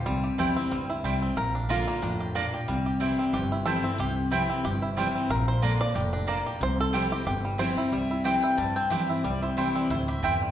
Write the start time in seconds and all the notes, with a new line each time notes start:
Already playing: C5
0.06 C2 C3 G3
0.24 G4
0.38 E2 E3 G3 C4 E4 C5 G5
0.56 C4 E4
0.71 D2 G2 G3
0.90 E4
1.04 C2 C3 G3 C4 E4 C5 G5
1.22 C4
1.36 A#1 A#2 A#4
1.55 D4
1.69 D3 A#3 D4 F4 D5 A#5
1.88 A#3
2.02 F2 A2 D4
2.20 G4
2.35 A#2 A#3 D4 F4 D5 A#5
2.54 G4
2.68 C2 C3 G3
2.86 G4
3.00 E3 G3 C4 E4 C5 G5
3.19 C4
3.33 G1 G2 G4
3.52 E4
3.65 E3 G3 C4 E4 A4 C5 G5
3.83 C4 E4
3.98 C2 C3 G4
4.31 E3 G3 C4 E4 C5 G5
4.50 C4
4.64 G1 G2 G4
4.82 E4
4.96 E3 G3 C4 E4 C5 G5
5.15 C4
5.29 A#1 A#2 A#4
5.48 C5
5.62 D3 A#3 D4 F4 D5 A#5
5.81 D5
5.95 F1 A2 G4
6.13 D4
6.27 A#2 A#3 F4 D5 A#5
6.46 G4
6.60 C2 C3 C5
6.80 A4
6.93 E3 G3 C4 E4 G4 C5 G5
7.11 C4 E4 G4
7.26 G1 G2 G4
7.45 G3
7.58 E3 G3 C4 E4 C5 G5
7.77 E4
7.92 C2 C3 G3 E5
8.11 E4
8.24 E3 G3 C4 E4 G4 C5 G5
8.42 E4 G5
8.58 G2 G3 A5
8.76 C4 G5
8.90 E3 G3 C4 E4 G4 C5 E5 G5
9.09 E4
9.24 C2 C3 G3 D5
9.42 E4 C5
9.57 E3 G3 C4 E4 C5 G5
9.75 C4 D5
9.90 D2 A2 E4 C5
10.08 G4 E5
10.22 E2 G2 C4 E4 C5 G5
10.42 G3